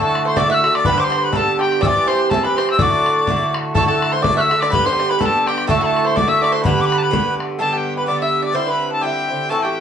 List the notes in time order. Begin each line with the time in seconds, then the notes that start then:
Already playing: A2 D3 A3 F#4
0.01 A4 A5
0.15 bodhran
0.25 C5 C6
0.36 A2 D3 A3 F#4 D5 D6, bodhran
0.50 E5 F#6
0.54 E6
0.64 D3 A3 F#4, bodhran
0.75 D5 D6, bodhran
0.85 G2 D3 B3 G4 B4 B5, bodhran
0.98 C5 D6
1.04 C6
1.10 C5, bodhran
1.18 B4 C5
1.24 B5
1.31 G2 D3 A4 B5, bodhran
1.36 B3 G4 A5
1.59 G4 G5, bodhran
1.72 bodhran
1.81 G2 E3 C4 D5 E6, bodhran
1.85 G4 D6
2.07 C5 C6, bodhran
2.29 G2 E3 C4 A4 A5, bodhran
2.34 G4
2.43 B4 B5
2.57 E3 C4 G4 C5 C6, bodhran
2.69 E6, bodhran
2.77 A2 D3 A3 D5 E6, bodhran
2.81 F#4 D6
3.06 bodhran
3.27 A2 D3 A3 F#4, bodhran
3.54 bodhran
3.74 A2 D3 A3 F#4 A4 A5, bodhran
3.87 A4 A5
4.02 bodhran
4.12 C5 C6
4.22 A2 D3 A3 D5 D6, bodhran
4.27 F#4
4.37 E5 E6 F#6
4.50 D3 A3 F#4, bodhran
4.60 D5 D6, bodhran
4.70 G2 D3 B3 B4 C5 B5, bodhran
4.74 G4
4.86 C5 C6
4.93 C5
4.99 C5, bodhran
5.09 B4 B5
5.19 G2 D3 B3 G4 A4 B5, bodhran
5.26 A5
5.47 G4 G5, bodhran
5.58 bodhran
5.67 A2 D3 A3 F#4 A4 A5, bodhran
5.81 A4 B5
5.86 A5
5.97 bodhran
6.04 C5 C6
6.16 A2 D3 A3 D5 D6, bodhran
6.20 F#4
6.28 E5 E6
6.42 D5 D6, bodhran
6.52 C5 C6
6.62 G2 D3 B3 B4 B5, bodhran
6.66 G4
6.81 D6
6.86 B5
6.92 bodhran
6.98 A5
7.03 B5
7.10 G2 D3 B3 G4, bodhran
7.40 bodhran
7.58 G2 D3 B3 G4 A4 A5
7.71 G4 A5
7.77 G5
7.96 B4 B5
8.06 G2 D3 B3 G4 D5 D6
8.20 E5 E6
8.42 D5 D6
8.52 G2 D3 C4 E4 C5 C6
8.67 B4 B5
8.90 A4 A5
9.01 G2 D3 C4 E4 G4 G5
9.28 D3 C4 E4
9.49 A2 E3 C4 F#4 A4 A5
9.63 G4 G5